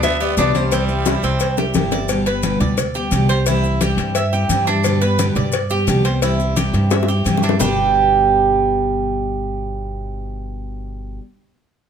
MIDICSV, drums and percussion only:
0, 0, Header, 1, 2, 480
1, 0, Start_track
1, 0, Key_signature, 1, "major"
1, 0, Tempo, 344828
1, 997, Time_signature, 4, 2, 24, 8
1, 16563, End_track
2, 0, Start_track
2, 0, Title_t, "Drums"
2, 39, Note_on_c, 9, 70, 71
2, 45, Note_on_c, 9, 56, 112
2, 52, Note_on_c, 9, 63, 36
2, 178, Note_off_c, 9, 70, 0
2, 184, Note_off_c, 9, 56, 0
2, 191, Note_off_c, 9, 63, 0
2, 287, Note_on_c, 9, 63, 33
2, 290, Note_on_c, 9, 70, 28
2, 427, Note_off_c, 9, 63, 0
2, 429, Note_off_c, 9, 70, 0
2, 517, Note_on_c, 9, 70, 73
2, 525, Note_on_c, 9, 56, 79
2, 529, Note_on_c, 9, 63, 79
2, 656, Note_off_c, 9, 70, 0
2, 665, Note_off_c, 9, 56, 0
2, 668, Note_off_c, 9, 63, 0
2, 760, Note_on_c, 9, 70, 34
2, 764, Note_on_c, 9, 63, 65
2, 765, Note_on_c, 9, 56, 78
2, 899, Note_off_c, 9, 70, 0
2, 903, Note_off_c, 9, 63, 0
2, 904, Note_off_c, 9, 56, 0
2, 995, Note_on_c, 9, 70, 72
2, 1002, Note_on_c, 9, 63, 38
2, 1005, Note_on_c, 9, 56, 115
2, 1134, Note_off_c, 9, 70, 0
2, 1141, Note_off_c, 9, 63, 0
2, 1144, Note_off_c, 9, 56, 0
2, 1232, Note_on_c, 9, 70, 30
2, 1242, Note_on_c, 9, 63, 39
2, 1372, Note_off_c, 9, 70, 0
2, 1381, Note_off_c, 9, 63, 0
2, 1469, Note_on_c, 9, 70, 76
2, 1476, Note_on_c, 9, 63, 94
2, 1478, Note_on_c, 9, 56, 81
2, 1478, Note_on_c, 9, 60, 122
2, 1608, Note_off_c, 9, 70, 0
2, 1616, Note_off_c, 9, 63, 0
2, 1617, Note_off_c, 9, 56, 0
2, 1617, Note_off_c, 9, 60, 0
2, 1709, Note_on_c, 9, 70, 31
2, 1715, Note_on_c, 9, 63, 36
2, 1726, Note_on_c, 9, 56, 65
2, 1848, Note_off_c, 9, 70, 0
2, 1854, Note_off_c, 9, 63, 0
2, 1865, Note_off_c, 9, 56, 0
2, 1943, Note_on_c, 9, 70, 73
2, 1955, Note_on_c, 9, 63, 35
2, 1961, Note_on_c, 9, 56, 123
2, 2082, Note_off_c, 9, 70, 0
2, 2094, Note_off_c, 9, 63, 0
2, 2100, Note_off_c, 9, 56, 0
2, 2186, Note_on_c, 9, 70, 29
2, 2195, Note_on_c, 9, 63, 35
2, 2198, Note_on_c, 9, 61, 81
2, 2326, Note_off_c, 9, 70, 0
2, 2334, Note_off_c, 9, 63, 0
2, 2338, Note_off_c, 9, 61, 0
2, 2420, Note_on_c, 9, 70, 70
2, 2432, Note_on_c, 9, 63, 87
2, 2438, Note_on_c, 9, 56, 73
2, 2438, Note_on_c, 9, 61, 89
2, 2560, Note_off_c, 9, 70, 0
2, 2572, Note_off_c, 9, 63, 0
2, 2577, Note_off_c, 9, 56, 0
2, 2577, Note_off_c, 9, 61, 0
2, 2663, Note_on_c, 9, 70, 34
2, 2671, Note_on_c, 9, 56, 77
2, 2671, Note_on_c, 9, 61, 73
2, 2802, Note_off_c, 9, 70, 0
2, 2811, Note_off_c, 9, 56, 0
2, 2811, Note_off_c, 9, 61, 0
2, 2902, Note_on_c, 9, 70, 80
2, 2911, Note_on_c, 9, 56, 102
2, 2917, Note_on_c, 9, 63, 38
2, 3042, Note_off_c, 9, 70, 0
2, 3050, Note_off_c, 9, 56, 0
2, 3056, Note_off_c, 9, 63, 0
2, 3147, Note_on_c, 9, 70, 30
2, 3149, Note_on_c, 9, 56, 70
2, 3153, Note_on_c, 9, 63, 44
2, 3286, Note_off_c, 9, 70, 0
2, 3288, Note_off_c, 9, 56, 0
2, 3292, Note_off_c, 9, 63, 0
2, 3379, Note_on_c, 9, 70, 74
2, 3387, Note_on_c, 9, 56, 73
2, 3388, Note_on_c, 9, 63, 102
2, 3518, Note_off_c, 9, 70, 0
2, 3527, Note_off_c, 9, 56, 0
2, 3527, Note_off_c, 9, 63, 0
2, 3626, Note_on_c, 9, 56, 59
2, 3627, Note_on_c, 9, 70, 31
2, 3632, Note_on_c, 9, 63, 35
2, 3632, Note_on_c, 9, 64, 88
2, 3765, Note_off_c, 9, 56, 0
2, 3766, Note_off_c, 9, 70, 0
2, 3771, Note_off_c, 9, 63, 0
2, 3771, Note_off_c, 9, 64, 0
2, 3863, Note_on_c, 9, 70, 73
2, 3866, Note_on_c, 9, 56, 112
2, 3866, Note_on_c, 9, 63, 36
2, 3866, Note_on_c, 9, 64, 72
2, 4002, Note_off_c, 9, 70, 0
2, 4005, Note_off_c, 9, 63, 0
2, 4005, Note_off_c, 9, 64, 0
2, 4006, Note_off_c, 9, 56, 0
2, 4097, Note_on_c, 9, 70, 27
2, 4109, Note_on_c, 9, 63, 38
2, 4237, Note_off_c, 9, 70, 0
2, 4248, Note_off_c, 9, 63, 0
2, 4333, Note_on_c, 9, 70, 70
2, 4344, Note_on_c, 9, 56, 73
2, 4344, Note_on_c, 9, 63, 86
2, 4472, Note_off_c, 9, 70, 0
2, 4483, Note_off_c, 9, 63, 0
2, 4484, Note_off_c, 9, 56, 0
2, 4583, Note_on_c, 9, 70, 31
2, 4584, Note_on_c, 9, 56, 77
2, 4722, Note_off_c, 9, 70, 0
2, 4723, Note_off_c, 9, 56, 0
2, 4818, Note_on_c, 9, 70, 74
2, 4822, Note_on_c, 9, 56, 104
2, 4826, Note_on_c, 9, 63, 37
2, 4957, Note_off_c, 9, 70, 0
2, 4962, Note_off_c, 9, 56, 0
2, 4965, Note_off_c, 9, 63, 0
2, 5061, Note_on_c, 9, 70, 31
2, 5070, Note_on_c, 9, 63, 40
2, 5200, Note_off_c, 9, 70, 0
2, 5209, Note_off_c, 9, 63, 0
2, 5300, Note_on_c, 9, 56, 74
2, 5303, Note_on_c, 9, 70, 86
2, 5304, Note_on_c, 9, 63, 106
2, 5440, Note_off_c, 9, 56, 0
2, 5442, Note_off_c, 9, 70, 0
2, 5443, Note_off_c, 9, 63, 0
2, 5540, Note_on_c, 9, 56, 71
2, 5544, Note_on_c, 9, 63, 40
2, 5544, Note_on_c, 9, 70, 31
2, 5679, Note_off_c, 9, 56, 0
2, 5683, Note_off_c, 9, 63, 0
2, 5683, Note_off_c, 9, 70, 0
2, 5775, Note_on_c, 9, 56, 117
2, 5780, Note_on_c, 9, 70, 69
2, 5786, Note_on_c, 9, 63, 41
2, 5914, Note_off_c, 9, 56, 0
2, 5919, Note_off_c, 9, 70, 0
2, 5925, Note_off_c, 9, 63, 0
2, 6023, Note_on_c, 9, 63, 37
2, 6029, Note_on_c, 9, 70, 30
2, 6162, Note_off_c, 9, 63, 0
2, 6168, Note_off_c, 9, 70, 0
2, 6258, Note_on_c, 9, 70, 71
2, 6262, Note_on_c, 9, 63, 90
2, 6266, Note_on_c, 9, 56, 74
2, 6397, Note_off_c, 9, 70, 0
2, 6401, Note_off_c, 9, 63, 0
2, 6405, Note_off_c, 9, 56, 0
2, 6502, Note_on_c, 9, 70, 36
2, 6506, Note_on_c, 9, 56, 76
2, 6641, Note_off_c, 9, 70, 0
2, 6645, Note_off_c, 9, 56, 0
2, 6738, Note_on_c, 9, 70, 66
2, 6742, Note_on_c, 9, 56, 102
2, 6747, Note_on_c, 9, 63, 39
2, 6877, Note_off_c, 9, 70, 0
2, 6881, Note_off_c, 9, 56, 0
2, 6887, Note_off_c, 9, 63, 0
2, 6982, Note_on_c, 9, 56, 66
2, 6986, Note_on_c, 9, 70, 29
2, 6990, Note_on_c, 9, 63, 38
2, 7121, Note_off_c, 9, 56, 0
2, 7125, Note_off_c, 9, 70, 0
2, 7129, Note_off_c, 9, 63, 0
2, 7219, Note_on_c, 9, 70, 81
2, 7223, Note_on_c, 9, 56, 78
2, 7226, Note_on_c, 9, 63, 108
2, 7358, Note_off_c, 9, 70, 0
2, 7362, Note_off_c, 9, 56, 0
2, 7365, Note_off_c, 9, 63, 0
2, 7452, Note_on_c, 9, 70, 30
2, 7463, Note_on_c, 9, 56, 61
2, 7472, Note_on_c, 9, 63, 35
2, 7472, Note_on_c, 9, 64, 97
2, 7591, Note_off_c, 9, 70, 0
2, 7602, Note_off_c, 9, 56, 0
2, 7611, Note_off_c, 9, 63, 0
2, 7611, Note_off_c, 9, 64, 0
2, 7683, Note_on_c, 9, 70, 70
2, 7705, Note_on_c, 9, 56, 117
2, 7706, Note_on_c, 9, 63, 37
2, 7823, Note_off_c, 9, 70, 0
2, 7844, Note_off_c, 9, 56, 0
2, 7845, Note_off_c, 9, 63, 0
2, 7927, Note_on_c, 9, 70, 28
2, 7938, Note_on_c, 9, 63, 34
2, 8066, Note_off_c, 9, 70, 0
2, 8077, Note_off_c, 9, 63, 0
2, 8176, Note_on_c, 9, 70, 64
2, 8183, Note_on_c, 9, 56, 75
2, 8184, Note_on_c, 9, 63, 86
2, 8315, Note_off_c, 9, 70, 0
2, 8322, Note_off_c, 9, 56, 0
2, 8323, Note_off_c, 9, 63, 0
2, 8415, Note_on_c, 9, 70, 32
2, 8420, Note_on_c, 9, 56, 83
2, 8554, Note_off_c, 9, 70, 0
2, 8559, Note_off_c, 9, 56, 0
2, 8661, Note_on_c, 9, 56, 107
2, 8661, Note_on_c, 9, 70, 66
2, 8668, Note_on_c, 9, 63, 37
2, 8800, Note_off_c, 9, 56, 0
2, 8800, Note_off_c, 9, 70, 0
2, 8807, Note_off_c, 9, 63, 0
2, 8903, Note_on_c, 9, 70, 30
2, 8906, Note_on_c, 9, 63, 41
2, 9043, Note_off_c, 9, 70, 0
2, 9046, Note_off_c, 9, 63, 0
2, 9140, Note_on_c, 9, 70, 82
2, 9145, Note_on_c, 9, 56, 83
2, 9148, Note_on_c, 9, 63, 114
2, 9279, Note_off_c, 9, 70, 0
2, 9284, Note_off_c, 9, 56, 0
2, 9287, Note_off_c, 9, 63, 0
2, 9377, Note_on_c, 9, 70, 32
2, 9384, Note_on_c, 9, 63, 40
2, 9385, Note_on_c, 9, 56, 63
2, 9517, Note_off_c, 9, 70, 0
2, 9523, Note_off_c, 9, 63, 0
2, 9524, Note_off_c, 9, 56, 0
2, 9613, Note_on_c, 9, 70, 67
2, 9621, Note_on_c, 9, 56, 111
2, 9621, Note_on_c, 9, 60, 104
2, 9626, Note_on_c, 9, 63, 38
2, 9752, Note_off_c, 9, 70, 0
2, 9760, Note_off_c, 9, 56, 0
2, 9760, Note_off_c, 9, 60, 0
2, 9765, Note_off_c, 9, 63, 0
2, 9782, Note_on_c, 9, 60, 75
2, 9863, Note_on_c, 9, 63, 36
2, 9868, Note_on_c, 9, 70, 29
2, 9921, Note_off_c, 9, 60, 0
2, 10002, Note_off_c, 9, 63, 0
2, 10007, Note_off_c, 9, 70, 0
2, 10104, Note_on_c, 9, 63, 90
2, 10104, Note_on_c, 9, 70, 72
2, 10106, Note_on_c, 9, 56, 70
2, 10243, Note_off_c, 9, 63, 0
2, 10244, Note_off_c, 9, 70, 0
2, 10245, Note_off_c, 9, 56, 0
2, 10266, Note_on_c, 9, 61, 79
2, 10336, Note_on_c, 9, 70, 35
2, 10353, Note_on_c, 9, 56, 70
2, 10405, Note_off_c, 9, 61, 0
2, 10426, Note_on_c, 9, 61, 102
2, 10475, Note_off_c, 9, 70, 0
2, 10492, Note_off_c, 9, 56, 0
2, 10566, Note_off_c, 9, 61, 0
2, 10578, Note_on_c, 9, 70, 91
2, 10584, Note_on_c, 9, 61, 98
2, 10588, Note_on_c, 9, 64, 98
2, 10717, Note_off_c, 9, 70, 0
2, 10723, Note_off_c, 9, 61, 0
2, 10728, Note_off_c, 9, 64, 0
2, 16563, End_track
0, 0, End_of_file